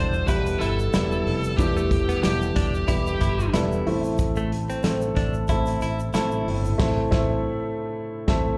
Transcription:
Already playing: fingered electric bass E1, upright piano B2 E3 G3 B3 E4 G4 A4, clean electric guitar D4, lead electric guitar C5
0.13 shaker
0.27 fingered electric bass E1, upright piano G3 B3 E4 G4, clean electric guitar E4, lead electric guitar B4, kick, closed hi-hat, shaker
0.46 closed hi-hat, shaker
0.59 fingered electric bass G1, clean electric guitar E4, lead electric guitar A4, closed hi-hat, shaker
0.79 shaker
0.93 fingered electric bass E1, upright piano G3 B3 E4 G4, clean electric guitar E4, snare, closed hi-hat, shaker
1.11 shaker
1.27 fingered electric bass F1, open hi-hat
1.44 shaker
1.57 fingered electric bass E1, upright piano E3 G3 B3 E4 A4, lead electric guitar G4, kick, closed hi-hat, shaker
1.77 clean electric guitar A3, shaker
1.91 kick, closed hi-hat
2.09 clean electric guitar B3, closed hi-hat, shaker
2.23 fingered electric bass E1, upright piano G3 B3 E4 G4, lead electric guitar G4, snare, closed hi-hat, shaker
2.42 shaker
2.56 fingered electric bass E1, clean electric guitar D4, kick, snare, closed hi-hat
2.74 shaker
2.88 fingered electric bass E1, upright piano G3 B3 E4 G4, clean electric guitar E4, kick, closed hi-hat, shaker
3.07 shaker
3.21 fingered electric bass G1, clean electric guitar E4, kick, closed hi-hat, shaker
3.40 shaker
3.53 fingered electric bass E1, upright piano G3 B3 E4 A4, clean electric guitar E4, snare, closed hi-hat, shaker
3.72 shaker
3.86 fingered electric bass A1, upright piano A2 A3 C4 E4 A4, open hi-hat
4.04 shaker
4.18 kick, closed hi-hat, shaker
4.36 clean electric guitar A3, shaker
4.52 closed hi-hat
4.70 clean electric guitar C4, closed hi-hat, shaker
4.83 fingered electric bass A1, upright piano A3 C4 E4 A4, snare, closed hi-hat, shaker
5.01 shaker
5.16 fingered electric bass A1, clean electric guitar D4, kick, snare, closed hi-hat
5.34 shaker
5.48 fingered electric bass A1, upright piano A3 C4 E4 A4, clean electric guitar E4, kick, closed hi-hat, shaker
5.66 closed hi-hat, shaker
5.81 fingered electric bass A1, clean electric guitar E4, closed hi-hat, shaker
5.99 shaker
6.14 fingered electric bass A1, upright piano A3 C4 E4 A4, clean electric guitar E4, snare, closed hi-hat, shaker
6.31 shaker
6.48 fingered electric bass G1, upright piano A2, open hi-hat
6.65 shaker
6.78 fingered electric bass A1, upright piano A3 C4 E4 A4, kick, snare, crash
7.11 fingered electric bass A1, upright piano A3 C4 E4 A4, kick, snare
8.27 fingered electric bass A1, upright piano A3 C4 E4 A4 E5, kick, snare

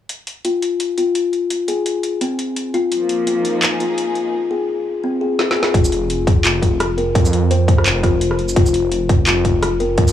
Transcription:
0.09 closed hi-hat
0.27 closed hi-hat
0.45 kalimba F4, closed hi-hat
0.62 closed hi-hat
0.80 closed hi-hat
0.98 kalimba F4, closed hi-hat
1.15 closed hi-hat
1.33 closed hi-hat
1.50 closed hi-hat
1.68 kalimba G#4, closed hi-hat
1.86 closed hi-hat
2.03 closed hi-hat
2.21 kalimba C4, closed hi-hat
2.39 closed hi-hat
2.56 closed hi-hat
2.74 kalimba F4, closed hi-hat
2.92 string section F3, closed hi-hat
2.97 string section A#3
3.09 closed hi-hat
3.27 kalimba F4, closed hi-hat
3.38 string section D#4
3.45 closed hi-hat
3.61 string section G#4, clap, closed hi-hat
3.80 kalimba F4, closed hi-hat
3.98 closed hi-hat
4.15 closed hi-hat
4.51 kalimba G#4
5.04 kalimba C4
5.21 kalimba G#4
5.39 snare
5.51 snare
5.57 kalimba G#4
5.63 snare
5.74 detuned saw bass F1, kalimba F4, kick, closed hi-hat
5.85 shaker
5.92 closed hi-hat
6.10 closed hi-hat
6.27 kick, closed hi-hat
6.45 detuned saw bass F1, kalimba F4, clap, closed hi-hat
6.62 kick, closed hi-hat
6.80 cross-stick, closed hi-hat
6.98 kalimba A#4, closed hi-hat
7.15 detuned saw bass F2, kick, closed hi-hat
7.25 shaker
7.33 closed hi-hat
7.51 kalimba C5, closed hi-hat
7.68 kick, closed hi-hat
7.78 cross-stick
7.86 detuned saw bass F1, clap, closed hi-hat
8.03 kalimba F4, kick, cross-stick, closed hi-hat
8.21 closed hi-hat
8.31 cross-stick
8.39 closed hi-hat
8.49 shaker
8.56 detuned saw bass F1, kalimba F4, kick, closed hi-hat
8.66 shaker
8.74 closed hi-hat
8.92 closed hi-hat
9.09 kick, closed hi-hat
9.27 detuned saw bass F1, kalimba F4, clap, closed hi-hat
9.45 kick, closed hi-hat
9.63 cross-stick, closed hi-hat
9.80 kalimba A#4, closed hi-hat
9.98 detuned saw bass F2, kick, closed hi-hat
10.08 shaker

